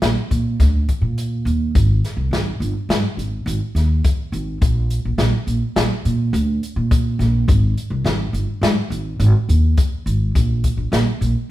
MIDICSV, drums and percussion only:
0, 0, Header, 1, 2, 480
1, 0, Start_track
1, 0, Tempo, 573614
1, 1459, Time_signature, 5, 2, 24, 8
1, 9628, End_track
2, 0, Start_track
2, 0, Title_t, "Drums"
2, 16, Note_on_c, 9, 38, 102
2, 16, Note_on_c, 9, 42, 83
2, 100, Note_off_c, 9, 38, 0
2, 100, Note_off_c, 9, 42, 0
2, 260, Note_on_c, 9, 36, 64
2, 262, Note_on_c, 9, 42, 59
2, 344, Note_off_c, 9, 36, 0
2, 346, Note_off_c, 9, 42, 0
2, 501, Note_on_c, 9, 36, 89
2, 502, Note_on_c, 9, 38, 32
2, 502, Note_on_c, 9, 42, 68
2, 584, Note_off_c, 9, 36, 0
2, 586, Note_off_c, 9, 38, 0
2, 586, Note_off_c, 9, 42, 0
2, 742, Note_on_c, 9, 36, 67
2, 742, Note_on_c, 9, 42, 50
2, 826, Note_off_c, 9, 36, 0
2, 826, Note_off_c, 9, 42, 0
2, 986, Note_on_c, 9, 42, 73
2, 1070, Note_off_c, 9, 42, 0
2, 1227, Note_on_c, 9, 42, 47
2, 1311, Note_off_c, 9, 42, 0
2, 1466, Note_on_c, 9, 36, 97
2, 1466, Note_on_c, 9, 42, 63
2, 1549, Note_off_c, 9, 42, 0
2, 1550, Note_off_c, 9, 36, 0
2, 1712, Note_on_c, 9, 38, 29
2, 1712, Note_on_c, 9, 42, 56
2, 1795, Note_off_c, 9, 38, 0
2, 1795, Note_off_c, 9, 42, 0
2, 1950, Note_on_c, 9, 38, 78
2, 1950, Note_on_c, 9, 42, 59
2, 2033, Note_off_c, 9, 38, 0
2, 2033, Note_off_c, 9, 42, 0
2, 2191, Note_on_c, 9, 42, 47
2, 2275, Note_off_c, 9, 42, 0
2, 2428, Note_on_c, 9, 38, 98
2, 2428, Note_on_c, 9, 42, 68
2, 2512, Note_off_c, 9, 38, 0
2, 2512, Note_off_c, 9, 42, 0
2, 2669, Note_on_c, 9, 42, 53
2, 2752, Note_off_c, 9, 42, 0
2, 2907, Note_on_c, 9, 42, 71
2, 2990, Note_off_c, 9, 42, 0
2, 3147, Note_on_c, 9, 38, 30
2, 3147, Note_on_c, 9, 42, 58
2, 3231, Note_off_c, 9, 38, 0
2, 3231, Note_off_c, 9, 42, 0
2, 3384, Note_on_c, 9, 42, 78
2, 3385, Note_on_c, 9, 36, 101
2, 3468, Note_off_c, 9, 42, 0
2, 3469, Note_off_c, 9, 36, 0
2, 3626, Note_on_c, 9, 42, 46
2, 3710, Note_off_c, 9, 42, 0
2, 3864, Note_on_c, 9, 42, 68
2, 3865, Note_on_c, 9, 36, 94
2, 3947, Note_off_c, 9, 42, 0
2, 3948, Note_off_c, 9, 36, 0
2, 4104, Note_on_c, 9, 42, 61
2, 4187, Note_off_c, 9, 42, 0
2, 4338, Note_on_c, 9, 38, 86
2, 4338, Note_on_c, 9, 42, 69
2, 4422, Note_off_c, 9, 38, 0
2, 4422, Note_off_c, 9, 42, 0
2, 4582, Note_on_c, 9, 42, 53
2, 4665, Note_off_c, 9, 42, 0
2, 4823, Note_on_c, 9, 38, 110
2, 4823, Note_on_c, 9, 42, 78
2, 4907, Note_off_c, 9, 38, 0
2, 4907, Note_off_c, 9, 42, 0
2, 5065, Note_on_c, 9, 42, 58
2, 5149, Note_off_c, 9, 42, 0
2, 5304, Note_on_c, 9, 42, 70
2, 5388, Note_off_c, 9, 42, 0
2, 5548, Note_on_c, 9, 42, 56
2, 5632, Note_off_c, 9, 42, 0
2, 5784, Note_on_c, 9, 36, 98
2, 5785, Note_on_c, 9, 42, 75
2, 5868, Note_off_c, 9, 36, 0
2, 5869, Note_off_c, 9, 42, 0
2, 6028, Note_on_c, 9, 38, 26
2, 6028, Note_on_c, 9, 42, 45
2, 6112, Note_off_c, 9, 38, 0
2, 6112, Note_off_c, 9, 42, 0
2, 6263, Note_on_c, 9, 36, 99
2, 6265, Note_on_c, 9, 42, 70
2, 6347, Note_off_c, 9, 36, 0
2, 6349, Note_off_c, 9, 42, 0
2, 6506, Note_on_c, 9, 42, 55
2, 6590, Note_off_c, 9, 42, 0
2, 6741, Note_on_c, 9, 38, 82
2, 6741, Note_on_c, 9, 42, 57
2, 6825, Note_off_c, 9, 38, 0
2, 6825, Note_off_c, 9, 42, 0
2, 6982, Note_on_c, 9, 42, 49
2, 7066, Note_off_c, 9, 42, 0
2, 7221, Note_on_c, 9, 38, 105
2, 7221, Note_on_c, 9, 42, 76
2, 7305, Note_off_c, 9, 38, 0
2, 7305, Note_off_c, 9, 42, 0
2, 7462, Note_on_c, 9, 42, 49
2, 7546, Note_off_c, 9, 42, 0
2, 7699, Note_on_c, 9, 42, 74
2, 7782, Note_off_c, 9, 42, 0
2, 7944, Note_on_c, 9, 42, 60
2, 8028, Note_off_c, 9, 42, 0
2, 8179, Note_on_c, 9, 42, 77
2, 8181, Note_on_c, 9, 36, 94
2, 8263, Note_off_c, 9, 42, 0
2, 8265, Note_off_c, 9, 36, 0
2, 8425, Note_on_c, 9, 42, 53
2, 8509, Note_off_c, 9, 42, 0
2, 8664, Note_on_c, 9, 36, 88
2, 8666, Note_on_c, 9, 42, 75
2, 8747, Note_off_c, 9, 36, 0
2, 8749, Note_off_c, 9, 42, 0
2, 8903, Note_on_c, 9, 42, 61
2, 8904, Note_on_c, 9, 36, 62
2, 8986, Note_off_c, 9, 42, 0
2, 8987, Note_off_c, 9, 36, 0
2, 9144, Note_on_c, 9, 38, 88
2, 9144, Note_on_c, 9, 42, 69
2, 9228, Note_off_c, 9, 38, 0
2, 9228, Note_off_c, 9, 42, 0
2, 9388, Note_on_c, 9, 42, 55
2, 9472, Note_off_c, 9, 42, 0
2, 9628, End_track
0, 0, End_of_file